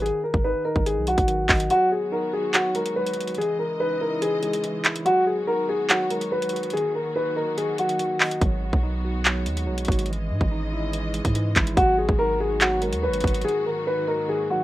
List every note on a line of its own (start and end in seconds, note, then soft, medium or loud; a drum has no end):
0.00 0.12 G#1 loud
0.00 0.85 D#3 medium
0.00 0.20 G#4 loud
0.06 closed hi-hat soft
0.24 0.41 A#4 medium
0.34 0.54 G#1 loud
0.34 kick loud
0.44 1.49 D#4 medium
0.44 0.62 B4 medium
0.65 0.83 A#4 medium
0.65 1.48 D#5 medium
0.76 0.98 G#1 loud
0.76 kick medium
0.86 1.26 D#3 medium
0.86 1.04 G#4 medium
0.86 closed hi-hat medium
0.97 1.17 B1 medium
1.07 1.69 F#3 medium
1.07 1.67 F#4 medium
1.07 closed hi-hat medium
1.18 1.48 G#1 loud
1.18 kick medium
1.18 closed hi-hat medium
1.27 1.70 D#3 medium
1.27 closed hi-hat medium
1.49 1.69 G#1 loud
1.49 1.70 D#5 medium
1.49 kick medium
1.49 clap loud
1.49 open hi-hat medium
1.60 closed hi-hat medium
1.70 3.36 D#3 medium
1.70 2.54 F#3 medium
1.70 6.70 G#3 medium
1.70 3.36 B3 medium
1.70 3.36 F#4 medium
1.70 1.88 F#4 loud
1.70 closed hi-hat medium
1.92 2.09 G#4 medium
2.12 3.17 D#4 medium
2.12 2.30 A#4 medium
2.33 3.16 F#4 medium
2.33 2.51 G#4 medium
2.54 2.95 F#3 medium
2.54 2.72 F#4 medium
2.54 clap loud
2.54 closed hi-hat medium
2.75 3.38 G#3 medium
2.75 2.93 A#4 medium
2.75 closed hi-hat medium
2.86 closed hi-hat medium
2.96 3.38 F#3 medium
2.96 3.35 B4 medium
3.06 closed hi-hat medium
3.13 3.38 F#4 medium
3.13 closed hi-hat medium
3.21 closed hi-hat medium
3.27 closed hi-hat medium
3.35 5.04 C#3 medium
3.35 4.21 E3 medium
3.35 5.04 E3 medium
3.35 3.56 G#4 loud
3.35 5.04 D#5 medium
3.35 closed hi-hat medium
3.41 closed hi-hat soft
3.59 3.77 A#4 medium
3.80 4.85 D#4 medium
3.80 3.97 B4 medium
4.01 4.83 E4 medium
4.01 4.19 A#4 medium
4.22 4.63 E3 medium
4.22 4.39 G#4 loud
4.22 closed hi-hat medium
4.43 5.06 G#3 medium
4.43 5.02 G#4 medium
4.43 closed hi-hat medium
4.53 closed hi-hat medium
4.64 5.06 E3 medium
4.64 closed hi-hat medium
4.84 5.05 E4 medium
4.84 clap loud
4.84 closed hi-hat medium
4.96 closed hi-hat medium
5.05 10.05 D#3 medium
5.05 5.88 F#3 medium
5.05 6.72 B3 medium
5.05 5.23 F#4 loud
5.05 6.72 F#4 medium
5.05 closed hi-hat medium
5.27 5.44 G#4 medium
5.47 6.53 D#4 medium
5.47 5.65 A#4 medium
5.68 6.52 F#4 medium
5.68 5.86 G#4 medium
5.90 6.30 F#3 medium
5.90 6.07 F#4 medium
5.90 clap loud
5.90 closed hi-hat medium
6.10 6.73 G#3 medium
6.10 6.28 A#4 medium
6.10 closed hi-hat medium
6.21 closed hi-hat medium
6.31 6.73 F#3 medium
6.31 6.71 B4 medium
6.42 closed hi-hat medium
6.49 6.74 F#4 medium
6.49 closed hi-hat medium
6.56 closed hi-hat medium
6.63 closed hi-hat medium
6.70 7.56 D#3 loud
6.70 8.40 F#3 medium
6.70 8.40 A#3 medium
6.70 8.40 F#4 medium
6.70 6.91 G#4 loud
6.70 closed hi-hat medium
6.77 closed hi-hat soft
6.95 7.12 A#4 medium
7.16 8.21 D#4 medium
7.16 7.33 B4 medium
7.36 7.54 A#4 medium
7.36 8.19 D#5 medium
7.57 7.98 D#3 medium
7.57 7.75 G#4 medium
7.57 closed hi-hat medium
7.78 8.41 F#3 medium
7.78 8.38 F#4 medium
7.78 closed hi-hat medium
7.89 closed hi-hat medium
7.99 8.41 D#3 medium
7.99 closed hi-hat medium
8.20 8.41 D#5 medium
8.20 clap loud
8.20 open hi-hat medium
8.31 closed hi-hat medium
8.41 8.72 G#1 loud
8.41 9.25 F#3 medium
8.41 13.41 G#3 medium
8.41 10.08 B3 medium
8.41 10.08 F#4 medium
8.41 kick loud
8.41 closed hi-hat medium
8.73 9.48 B1 loud
8.73 kick medium
8.83 9.88 D#4 medium
9.05 9.88 F#4 medium
9.25 9.66 F#3 medium
9.25 clap loud
9.25 closed hi-hat medium
9.46 9.69 D#2 loud
9.46 10.09 G#3 medium
9.46 closed hi-hat medium
9.57 closed hi-hat medium
9.67 9.87 B1 loud
9.67 10.09 F#3 medium
9.78 closed hi-hat medium
9.85 10.32 G#1 loud
9.85 kick loud
9.85 closed hi-hat medium
9.89 10.10 F#4 medium
9.89 closed hi-hat medium
9.99 closed hi-hat medium
10.06 11.75 C#3 medium
10.06 11.75 E3 medium
10.06 10.92 E3 medium
10.06 11.75 D#5 medium
10.06 closed hi-hat medium
10.13 closed hi-hat soft
10.30 10.40 G#2 loud
10.41 11.21 G#1 loud
10.41 kick medium
10.51 11.56 D#4 loud
10.72 11.54 E4 medium
10.93 11.35 E3 medium
10.93 closed hi-hat medium
11.14 11.77 G#3 medium
11.14 closed hi-hat medium
11.25 11.55 G#2 loud
11.25 kick medium
11.25 closed hi-hat medium
11.35 11.77 E3 medium
11.35 closed hi-hat medium
11.55 11.76 G#1 loud
11.55 11.77 E4 medium
11.55 kick loud
11.55 clap loud
11.55 closed hi-hat medium
11.67 closed hi-hat medium
11.76 12.07 G#1 loud
11.76 14.64 D#3 medium
11.76 12.60 F#3 medium
11.76 13.43 B3 medium
11.76 11.94 F#4 loud
11.76 14.64 F#4 medium
11.76 kick loud
11.76 closed hi-hat medium
11.98 12.16 G#4 medium
12.09 12.94 G#1 loud
12.09 kick loud
12.19 13.24 D#4 medium
12.19 12.36 A#4 loud
12.39 13.23 F#4 medium
12.39 12.58 G#4 medium
12.61 13.01 F#3 loud
12.61 12.79 F#4 medium
12.61 clap loud
12.61 closed hi-hat medium
12.81 13.45 G#3 medium
12.81 12.99 A#4 medium
12.81 closed hi-hat medium
12.93 13.10 D#2 loud
12.93 closed hi-hat medium
13.03 13.45 F#3 medium
13.03 13.43 B4 medium
13.08 13.23 G#1 loud
13.13 closed hi-hat medium
13.20 13.44 G#1 loud
13.20 13.45 F#4 medium
13.20 kick loud
13.20 closed hi-hat medium
13.27 closed hi-hat medium
13.34 closed hi-hat medium
13.41 14.64 G#2 medium
13.41 14.27 D#3 medium
13.41 14.64 F#3 medium
13.41 14.64 A#3 medium
13.41 13.62 G#4 loud
13.41 closed hi-hat medium
13.48 closed hi-hat soft
13.66 13.84 A#4 medium
13.87 14.64 D#4 medium
13.87 14.04 B4 medium
14.07 14.25 A#4 medium
14.07 14.64 D#5 medium
14.29 14.64 D#3 medium
14.29 14.46 G#4 medium
14.50 14.64 F#3 medium
14.50 14.64 F#4 medium